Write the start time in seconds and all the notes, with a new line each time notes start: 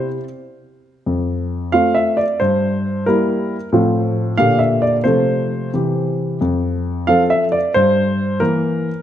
Already playing: C3 E4 G4
1.06 F2
1.72 A3 C4 F4 F5
1.95 E5
2.17 D5
2.40 G2 C5
3.06 G3 A#3 E4 A#4
3.72 A2 F3 C4 F4
4.38 A#2 D3 A#3 G4 F5
4.59 E5
4.82 D5
5.04 C3 F3 A3 A4 C5
5.73 C3 E3 C4 G4
6.41 F2
7.07 F3 C4 A4 F5
7.30 E5
7.52 D5
7.74 G2 C5
8.40 E3 A#3 A#4